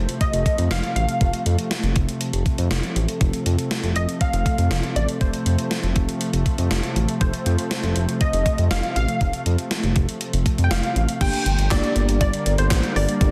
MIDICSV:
0, 0, Header, 1, 6, 480
1, 0, Start_track
1, 0, Tempo, 500000
1, 1161, Time_signature, 4, 2, 24, 8
1, 12780, End_track
2, 0, Start_track
2, 0, Title_t, "Analog polysynth"
2, 0, Program_c, 0, 90
2, 0, Note_on_c, 0, 72, 89
2, 202, Note_on_c, 0, 75, 99
2, 230, Note_off_c, 0, 72, 0
2, 682, Note_on_c, 0, 77, 103
2, 696, Note_off_c, 0, 75, 0
2, 905, Note_off_c, 0, 77, 0
2, 921, Note_on_c, 0, 77, 103
2, 1367, Note_off_c, 0, 77, 0
2, 3802, Note_on_c, 0, 75, 94
2, 3910, Note_off_c, 0, 75, 0
2, 4042, Note_on_c, 0, 77, 110
2, 4762, Note_on_c, 0, 74, 89
2, 4783, Note_off_c, 0, 77, 0
2, 4870, Note_off_c, 0, 74, 0
2, 5001, Note_on_c, 0, 72, 87
2, 5923, Note_off_c, 0, 72, 0
2, 6921, Note_on_c, 0, 72, 91
2, 7881, Note_on_c, 0, 75, 106
2, 7910, Note_off_c, 0, 72, 0
2, 8328, Note_off_c, 0, 75, 0
2, 8361, Note_on_c, 0, 77, 103
2, 8584, Note_off_c, 0, 77, 0
2, 8602, Note_on_c, 0, 77, 102
2, 9048, Note_off_c, 0, 77, 0
2, 10214, Note_on_c, 0, 79, 71
2, 10281, Note_off_c, 0, 79, 0
2, 10281, Note_on_c, 0, 77, 99
2, 10728, Note_off_c, 0, 77, 0
2, 10761, Note_on_c, 0, 79, 115
2, 11242, Note_on_c, 0, 74, 105
2, 11256, Note_off_c, 0, 79, 0
2, 11710, Note_off_c, 0, 74, 0
2, 11721, Note_on_c, 0, 74, 100
2, 12082, Note_on_c, 0, 72, 94
2, 12092, Note_off_c, 0, 74, 0
2, 12443, Note_on_c, 0, 74, 90
2, 12452, Note_off_c, 0, 72, 0
2, 12780, Note_off_c, 0, 74, 0
2, 12780, End_track
3, 0, Start_track
3, 0, Title_t, "FM electric piano"
3, 0, Program_c, 1, 5
3, 10761, Note_on_c, 1, 58, 75
3, 10761, Note_on_c, 1, 62, 71
3, 10761, Note_on_c, 1, 67, 83
3, 11005, Note_off_c, 1, 58, 0
3, 11005, Note_off_c, 1, 62, 0
3, 11005, Note_off_c, 1, 67, 0
3, 11241, Note_on_c, 1, 58, 77
3, 11241, Note_on_c, 1, 62, 70
3, 11241, Note_on_c, 1, 67, 84
3, 11728, Note_off_c, 1, 58, 0
3, 11728, Note_off_c, 1, 62, 0
3, 11728, Note_off_c, 1, 67, 0
3, 12681, Note_on_c, 1, 58, 76
3, 12681, Note_on_c, 1, 62, 69
3, 12681, Note_on_c, 1, 67, 89
3, 12780, Note_off_c, 1, 58, 0
3, 12780, Note_off_c, 1, 62, 0
3, 12780, Note_off_c, 1, 67, 0
3, 12780, End_track
4, 0, Start_track
4, 0, Title_t, "Analog synth pad"
4, 0, Program_c, 2, 89
4, 0, Note_on_c, 2, 48, 80
4, 0, Note_on_c, 2, 53, 70
4, 0, Note_on_c, 2, 57, 88
4, 10723, Note_off_c, 2, 48, 0
4, 10723, Note_off_c, 2, 53, 0
4, 10723, Note_off_c, 2, 57, 0
4, 10762, Note_on_c, 2, 50, 77
4, 10762, Note_on_c, 2, 55, 73
4, 10762, Note_on_c, 2, 58, 86
4, 12780, Note_off_c, 2, 50, 0
4, 12780, Note_off_c, 2, 55, 0
4, 12780, Note_off_c, 2, 58, 0
4, 12780, End_track
5, 0, Start_track
5, 0, Title_t, "Analog synth bass"
5, 0, Program_c, 3, 38
5, 321, Note_on_c, 3, 29, 103
5, 423, Note_off_c, 3, 29, 0
5, 561, Note_on_c, 3, 41, 99
5, 662, Note_off_c, 3, 41, 0
5, 681, Note_on_c, 3, 29, 93
5, 783, Note_off_c, 3, 29, 0
5, 921, Note_on_c, 3, 33, 90
5, 1023, Note_off_c, 3, 33, 0
5, 1161, Note_on_c, 3, 29, 101
5, 1263, Note_off_c, 3, 29, 0
5, 1401, Note_on_c, 3, 41, 102
5, 1502, Note_off_c, 3, 41, 0
5, 1760, Note_on_c, 3, 29, 95
5, 1862, Note_off_c, 3, 29, 0
5, 1882, Note_on_c, 3, 29, 97
5, 1983, Note_off_c, 3, 29, 0
5, 2240, Note_on_c, 3, 29, 105
5, 2342, Note_off_c, 3, 29, 0
5, 2481, Note_on_c, 3, 41, 101
5, 2583, Note_off_c, 3, 41, 0
5, 2601, Note_on_c, 3, 29, 98
5, 2703, Note_off_c, 3, 29, 0
5, 2841, Note_on_c, 3, 33, 88
5, 2943, Note_off_c, 3, 33, 0
5, 3081, Note_on_c, 3, 29, 103
5, 3183, Note_off_c, 3, 29, 0
5, 3321, Note_on_c, 3, 41, 101
5, 3423, Note_off_c, 3, 41, 0
5, 3681, Note_on_c, 3, 29, 95
5, 3783, Note_off_c, 3, 29, 0
5, 3802, Note_on_c, 3, 29, 97
5, 3903, Note_off_c, 3, 29, 0
5, 4161, Note_on_c, 3, 29, 100
5, 4263, Note_off_c, 3, 29, 0
5, 4401, Note_on_c, 3, 41, 99
5, 4503, Note_off_c, 3, 41, 0
5, 4521, Note_on_c, 3, 29, 96
5, 4623, Note_off_c, 3, 29, 0
5, 4761, Note_on_c, 3, 33, 89
5, 4863, Note_off_c, 3, 33, 0
5, 5001, Note_on_c, 3, 29, 97
5, 5103, Note_off_c, 3, 29, 0
5, 5241, Note_on_c, 3, 41, 101
5, 5343, Note_off_c, 3, 41, 0
5, 5602, Note_on_c, 3, 29, 96
5, 5703, Note_off_c, 3, 29, 0
5, 5722, Note_on_c, 3, 29, 98
5, 5824, Note_off_c, 3, 29, 0
5, 6081, Note_on_c, 3, 29, 102
5, 6183, Note_off_c, 3, 29, 0
5, 6321, Note_on_c, 3, 41, 97
5, 6423, Note_off_c, 3, 41, 0
5, 6442, Note_on_c, 3, 29, 94
5, 6543, Note_off_c, 3, 29, 0
5, 6681, Note_on_c, 3, 33, 90
5, 6783, Note_off_c, 3, 33, 0
5, 6921, Note_on_c, 3, 29, 100
5, 7023, Note_off_c, 3, 29, 0
5, 7161, Note_on_c, 3, 41, 101
5, 7263, Note_off_c, 3, 41, 0
5, 7521, Note_on_c, 3, 29, 99
5, 7623, Note_off_c, 3, 29, 0
5, 7641, Note_on_c, 3, 29, 101
5, 7743, Note_off_c, 3, 29, 0
5, 8001, Note_on_c, 3, 29, 105
5, 8103, Note_off_c, 3, 29, 0
5, 8241, Note_on_c, 3, 41, 99
5, 8343, Note_off_c, 3, 41, 0
5, 8361, Note_on_c, 3, 29, 98
5, 8463, Note_off_c, 3, 29, 0
5, 8601, Note_on_c, 3, 33, 90
5, 8703, Note_off_c, 3, 33, 0
5, 8841, Note_on_c, 3, 29, 113
5, 8943, Note_off_c, 3, 29, 0
5, 9081, Note_on_c, 3, 41, 108
5, 9183, Note_off_c, 3, 41, 0
5, 9441, Note_on_c, 3, 29, 95
5, 9543, Note_off_c, 3, 29, 0
5, 9563, Note_on_c, 3, 29, 98
5, 9664, Note_off_c, 3, 29, 0
5, 9921, Note_on_c, 3, 29, 97
5, 10023, Note_off_c, 3, 29, 0
5, 10161, Note_on_c, 3, 41, 92
5, 10263, Note_off_c, 3, 41, 0
5, 10281, Note_on_c, 3, 29, 89
5, 10382, Note_off_c, 3, 29, 0
5, 10521, Note_on_c, 3, 33, 94
5, 10623, Note_off_c, 3, 33, 0
5, 10761, Note_on_c, 3, 31, 99
5, 10863, Note_off_c, 3, 31, 0
5, 11000, Note_on_c, 3, 31, 103
5, 11102, Note_off_c, 3, 31, 0
5, 11120, Note_on_c, 3, 31, 101
5, 11222, Note_off_c, 3, 31, 0
5, 11242, Note_on_c, 3, 31, 102
5, 11344, Note_off_c, 3, 31, 0
5, 11481, Note_on_c, 3, 31, 111
5, 11583, Note_off_c, 3, 31, 0
5, 11600, Note_on_c, 3, 31, 101
5, 11702, Note_off_c, 3, 31, 0
5, 11720, Note_on_c, 3, 31, 103
5, 11822, Note_off_c, 3, 31, 0
5, 11961, Note_on_c, 3, 31, 97
5, 12063, Note_off_c, 3, 31, 0
5, 12081, Note_on_c, 3, 31, 101
5, 12183, Note_off_c, 3, 31, 0
5, 12201, Note_on_c, 3, 33, 100
5, 12302, Note_off_c, 3, 33, 0
5, 12441, Note_on_c, 3, 31, 93
5, 12543, Note_off_c, 3, 31, 0
5, 12681, Note_on_c, 3, 31, 115
5, 12780, Note_off_c, 3, 31, 0
5, 12780, End_track
6, 0, Start_track
6, 0, Title_t, "Drums"
6, 84, Note_on_c, 9, 42, 50
6, 180, Note_off_c, 9, 42, 0
6, 200, Note_on_c, 9, 36, 93
6, 200, Note_on_c, 9, 42, 80
6, 296, Note_off_c, 9, 36, 0
6, 296, Note_off_c, 9, 42, 0
6, 322, Note_on_c, 9, 42, 60
6, 418, Note_off_c, 9, 42, 0
6, 440, Note_on_c, 9, 36, 89
6, 442, Note_on_c, 9, 42, 74
6, 536, Note_off_c, 9, 36, 0
6, 538, Note_off_c, 9, 42, 0
6, 561, Note_on_c, 9, 42, 55
6, 657, Note_off_c, 9, 42, 0
6, 680, Note_on_c, 9, 38, 109
6, 681, Note_on_c, 9, 42, 68
6, 776, Note_off_c, 9, 38, 0
6, 777, Note_off_c, 9, 42, 0
6, 801, Note_on_c, 9, 42, 47
6, 897, Note_off_c, 9, 42, 0
6, 923, Note_on_c, 9, 42, 67
6, 1019, Note_off_c, 9, 42, 0
6, 1042, Note_on_c, 9, 42, 50
6, 1138, Note_off_c, 9, 42, 0
6, 1161, Note_on_c, 9, 36, 113
6, 1161, Note_on_c, 9, 42, 69
6, 1257, Note_off_c, 9, 36, 0
6, 1257, Note_off_c, 9, 42, 0
6, 1281, Note_on_c, 9, 42, 56
6, 1377, Note_off_c, 9, 42, 0
6, 1402, Note_on_c, 9, 42, 77
6, 1498, Note_off_c, 9, 42, 0
6, 1522, Note_on_c, 9, 42, 51
6, 1618, Note_off_c, 9, 42, 0
6, 1641, Note_on_c, 9, 38, 107
6, 1642, Note_on_c, 9, 42, 64
6, 1737, Note_off_c, 9, 38, 0
6, 1738, Note_off_c, 9, 42, 0
6, 1761, Note_on_c, 9, 42, 48
6, 1857, Note_off_c, 9, 42, 0
6, 1879, Note_on_c, 9, 42, 66
6, 1882, Note_on_c, 9, 36, 88
6, 1975, Note_off_c, 9, 42, 0
6, 1978, Note_off_c, 9, 36, 0
6, 2003, Note_on_c, 9, 42, 52
6, 2099, Note_off_c, 9, 42, 0
6, 2119, Note_on_c, 9, 42, 80
6, 2215, Note_off_c, 9, 42, 0
6, 2241, Note_on_c, 9, 42, 62
6, 2337, Note_off_c, 9, 42, 0
6, 2359, Note_on_c, 9, 36, 92
6, 2361, Note_on_c, 9, 42, 72
6, 2455, Note_off_c, 9, 36, 0
6, 2457, Note_off_c, 9, 42, 0
6, 2480, Note_on_c, 9, 42, 52
6, 2576, Note_off_c, 9, 42, 0
6, 2600, Note_on_c, 9, 38, 108
6, 2601, Note_on_c, 9, 42, 67
6, 2696, Note_off_c, 9, 38, 0
6, 2697, Note_off_c, 9, 42, 0
6, 2721, Note_on_c, 9, 42, 46
6, 2817, Note_off_c, 9, 42, 0
6, 2843, Note_on_c, 9, 42, 67
6, 2939, Note_off_c, 9, 42, 0
6, 2961, Note_on_c, 9, 42, 51
6, 3057, Note_off_c, 9, 42, 0
6, 3080, Note_on_c, 9, 42, 70
6, 3081, Note_on_c, 9, 36, 111
6, 3176, Note_off_c, 9, 42, 0
6, 3177, Note_off_c, 9, 36, 0
6, 3201, Note_on_c, 9, 42, 55
6, 3297, Note_off_c, 9, 42, 0
6, 3322, Note_on_c, 9, 42, 75
6, 3418, Note_off_c, 9, 42, 0
6, 3442, Note_on_c, 9, 42, 51
6, 3538, Note_off_c, 9, 42, 0
6, 3561, Note_on_c, 9, 38, 111
6, 3562, Note_on_c, 9, 42, 65
6, 3657, Note_off_c, 9, 38, 0
6, 3658, Note_off_c, 9, 42, 0
6, 3682, Note_on_c, 9, 42, 48
6, 3778, Note_off_c, 9, 42, 0
6, 3799, Note_on_c, 9, 42, 66
6, 3895, Note_off_c, 9, 42, 0
6, 3923, Note_on_c, 9, 42, 52
6, 4019, Note_off_c, 9, 42, 0
6, 4040, Note_on_c, 9, 36, 90
6, 4040, Note_on_c, 9, 42, 81
6, 4136, Note_off_c, 9, 36, 0
6, 4136, Note_off_c, 9, 42, 0
6, 4161, Note_on_c, 9, 42, 63
6, 4257, Note_off_c, 9, 42, 0
6, 4280, Note_on_c, 9, 36, 92
6, 4282, Note_on_c, 9, 42, 73
6, 4376, Note_off_c, 9, 36, 0
6, 4378, Note_off_c, 9, 42, 0
6, 4400, Note_on_c, 9, 42, 55
6, 4496, Note_off_c, 9, 42, 0
6, 4520, Note_on_c, 9, 38, 109
6, 4521, Note_on_c, 9, 42, 69
6, 4616, Note_off_c, 9, 38, 0
6, 4617, Note_off_c, 9, 42, 0
6, 4641, Note_on_c, 9, 42, 47
6, 4737, Note_off_c, 9, 42, 0
6, 4763, Note_on_c, 9, 42, 65
6, 4859, Note_off_c, 9, 42, 0
6, 4882, Note_on_c, 9, 42, 51
6, 4978, Note_off_c, 9, 42, 0
6, 5001, Note_on_c, 9, 36, 115
6, 5001, Note_on_c, 9, 42, 69
6, 5097, Note_off_c, 9, 36, 0
6, 5097, Note_off_c, 9, 42, 0
6, 5121, Note_on_c, 9, 42, 55
6, 5217, Note_off_c, 9, 42, 0
6, 5242, Note_on_c, 9, 42, 75
6, 5338, Note_off_c, 9, 42, 0
6, 5362, Note_on_c, 9, 42, 50
6, 5458, Note_off_c, 9, 42, 0
6, 5481, Note_on_c, 9, 38, 114
6, 5482, Note_on_c, 9, 42, 64
6, 5577, Note_off_c, 9, 38, 0
6, 5578, Note_off_c, 9, 42, 0
6, 5601, Note_on_c, 9, 42, 47
6, 5697, Note_off_c, 9, 42, 0
6, 5719, Note_on_c, 9, 42, 68
6, 5722, Note_on_c, 9, 36, 88
6, 5815, Note_off_c, 9, 42, 0
6, 5818, Note_off_c, 9, 36, 0
6, 5843, Note_on_c, 9, 42, 52
6, 5939, Note_off_c, 9, 42, 0
6, 5959, Note_on_c, 9, 42, 79
6, 6055, Note_off_c, 9, 42, 0
6, 6081, Note_on_c, 9, 42, 61
6, 6177, Note_off_c, 9, 42, 0
6, 6200, Note_on_c, 9, 36, 90
6, 6201, Note_on_c, 9, 42, 76
6, 6296, Note_off_c, 9, 36, 0
6, 6297, Note_off_c, 9, 42, 0
6, 6320, Note_on_c, 9, 42, 54
6, 6416, Note_off_c, 9, 42, 0
6, 6440, Note_on_c, 9, 38, 110
6, 6441, Note_on_c, 9, 42, 69
6, 6536, Note_off_c, 9, 38, 0
6, 6537, Note_off_c, 9, 42, 0
6, 6561, Note_on_c, 9, 42, 48
6, 6657, Note_off_c, 9, 42, 0
6, 6683, Note_on_c, 9, 42, 64
6, 6779, Note_off_c, 9, 42, 0
6, 6802, Note_on_c, 9, 42, 52
6, 6898, Note_off_c, 9, 42, 0
6, 6921, Note_on_c, 9, 36, 116
6, 6921, Note_on_c, 9, 42, 69
6, 7017, Note_off_c, 9, 36, 0
6, 7017, Note_off_c, 9, 42, 0
6, 7041, Note_on_c, 9, 42, 57
6, 7137, Note_off_c, 9, 42, 0
6, 7162, Note_on_c, 9, 42, 78
6, 7258, Note_off_c, 9, 42, 0
6, 7282, Note_on_c, 9, 42, 51
6, 7378, Note_off_c, 9, 42, 0
6, 7401, Note_on_c, 9, 38, 111
6, 7402, Note_on_c, 9, 42, 65
6, 7497, Note_off_c, 9, 38, 0
6, 7498, Note_off_c, 9, 42, 0
6, 7521, Note_on_c, 9, 42, 48
6, 7617, Note_off_c, 9, 42, 0
6, 7639, Note_on_c, 9, 42, 71
6, 7735, Note_off_c, 9, 42, 0
6, 7763, Note_on_c, 9, 42, 53
6, 7859, Note_off_c, 9, 42, 0
6, 7879, Note_on_c, 9, 42, 80
6, 7880, Note_on_c, 9, 36, 92
6, 7975, Note_off_c, 9, 42, 0
6, 7976, Note_off_c, 9, 36, 0
6, 8001, Note_on_c, 9, 42, 64
6, 8097, Note_off_c, 9, 42, 0
6, 8119, Note_on_c, 9, 36, 91
6, 8121, Note_on_c, 9, 42, 77
6, 8215, Note_off_c, 9, 36, 0
6, 8217, Note_off_c, 9, 42, 0
6, 8240, Note_on_c, 9, 42, 55
6, 8336, Note_off_c, 9, 42, 0
6, 8360, Note_on_c, 9, 38, 110
6, 8361, Note_on_c, 9, 42, 69
6, 8456, Note_off_c, 9, 38, 0
6, 8457, Note_off_c, 9, 42, 0
6, 8481, Note_on_c, 9, 42, 45
6, 8577, Note_off_c, 9, 42, 0
6, 8603, Note_on_c, 9, 42, 66
6, 8699, Note_off_c, 9, 42, 0
6, 8721, Note_on_c, 9, 42, 50
6, 8817, Note_off_c, 9, 42, 0
6, 8840, Note_on_c, 9, 42, 70
6, 8841, Note_on_c, 9, 36, 110
6, 8936, Note_off_c, 9, 42, 0
6, 8937, Note_off_c, 9, 36, 0
6, 8961, Note_on_c, 9, 42, 55
6, 9057, Note_off_c, 9, 42, 0
6, 9082, Note_on_c, 9, 42, 77
6, 9178, Note_off_c, 9, 42, 0
6, 9201, Note_on_c, 9, 42, 50
6, 9297, Note_off_c, 9, 42, 0
6, 9321, Note_on_c, 9, 38, 108
6, 9322, Note_on_c, 9, 42, 66
6, 9417, Note_off_c, 9, 38, 0
6, 9418, Note_off_c, 9, 42, 0
6, 9441, Note_on_c, 9, 42, 48
6, 9537, Note_off_c, 9, 42, 0
6, 9559, Note_on_c, 9, 42, 67
6, 9562, Note_on_c, 9, 36, 88
6, 9655, Note_off_c, 9, 42, 0
6, 9658, Note_off_c, 9, 36, 0
6, 9683, Note_on_c, 9, 42, 52
6, 9779, Note_off_c, 9, 42, 0
6, 9800, Note_on_c, 9, 42, 81
6, 9896, Note_off_c, 9, 42, 0
6, 9921, Note_on_c, 9, 42, 64
6, 10017, Note_off_c, 9, 42, 0
6, 10040, Note_on_c, 9, 36, 90
6, 10042, Note_on_c, 9, 42, 76
6, 10136, Note_off_c, 9, 36, 0
6, 10138, Note_off_c, 9, 42, 0
6, 10160, Note_on_c, 9, 42, 52
6, 10256, Note_off_c, 9, 42, 0
6, 10280, Note_on_c, 9, 38, 115
6, 10282, Note_on_c, 9, 42, 70
6, 10376, Note_off_c, 9, 38, 0
6, 10378, Note_off_c, 9, 42, 0
6, 10401, Note_on_c, 9, 42, 47
6, 10497, Note_off_c, 9, 42, 0
6, 10523, Note_on_c, 9, 42, 66
6, 10619, Note_off_c, 9, 42, 0
6, 10642, Note_on_c, 9, 42, 51
6, 10738, Note_off_c, 9, 42, 0
6, 10761, Note_on_c, 9, 36, 124
6, 10761, Note_on_c, 9, 42, 70
6, 10761, Note_on_c, 9, 49, 105
6, 10857, Note_off_c, 9, 36, 0
6, 10857, Note_off_c, 9, 42, 0
6, 10857, Note_off_c, 9, 49, 0
6, 10882, Note_on_c, 9, 42, 57
6, 10978, Note_off_c, 9, 42, 0
6, 11003, Note_on_c, 9, 42, 81
6, 11099, Note_off_c, 9, 42, 0
6, 11122, Note_on_c, 9, 42, 52
6, 11218, Note_off_c, 9, 42, 0
6, 11242, Note_on_c, 9, 36, 113
6, 11242, Note_on_c, 9, 38, 119
6, 11242, Note_on_c, 9, 39, 99
6, 11243, Note_on_c, 9, 42, 67
6, 11338, Note_off_c, 9, 36, 0
6, 11338, Note_off_c, 9, 38, 0
6, 11338, Note_off_c, 9, 39, 0
6, 11339, Note_off_c, 9, 42, 0
6, 11362, Note_on_c, 9, 42, 51
6, 11458, Note_off_c, 9, 42, 0
6, 11479, Note_on_c, 9, 42, 71
6, 11575, Note_off_c, 9, 42, 0
6, 11603, Note_on_c, 9, 42, 54
6, 11699, Note_off_c, 9, 42, 0
6, 11720, Note_on_c, 9, 36, 117
6, 11720, Note_on_c, 9, 42, 86
6, 11816, Note_off_c, 9, 36, 0
6, 11816, Note_off_c, 9, 42, 0
6, 11842, Note_on_c, 9, 42, 68
6, 11938, Note_off_c, 9, 42, 0
6, 11962, Note_on_c, 9, 42, 80
6, 12058, Note_off_c, 9, 42, 0
6, 12080, Note_on_c, 9, 42, 57
6, 12176, Note_off_c, 9, 42, 0
6, 12200, Note_on_c, 9, 36, 114
6, 12200, Note_on_c, 9, 38, 119
6, 12200, Note_on_c, 9, 39, 97
6, 12202, Note_on_c, 9, 42, 74
6, 12296, Note_off_c, 9, 36, 0
6, 12296, Note_off_c, 9, 38, 0
6, 12296, Note_off_c, 9, 39, 0
6, 12298, Note_off_c, 9, 42, 0
6, 12321, Note_on_c, 9, 42, 51
6, 12417, Note_off_c, 9, 42, 0
6, 12444, Note_on_c, 9, 46, 69
6, 12540, Note_off_c, 9, 46, 0
6, 12562, Note_on_c, 9, 42, 54
6, 12658, Note_off_c, 9, 42, 0
6, 12681, Note_on_c, 9, 36, 117
6, 12682, Note_on_c, 9, 42, 72
6, 12777, Note_off_c, 9, 36, 0
6, 12778, Note_off_c, 9, 42, 0
6, 12780, End_track
0, 0, End_of_file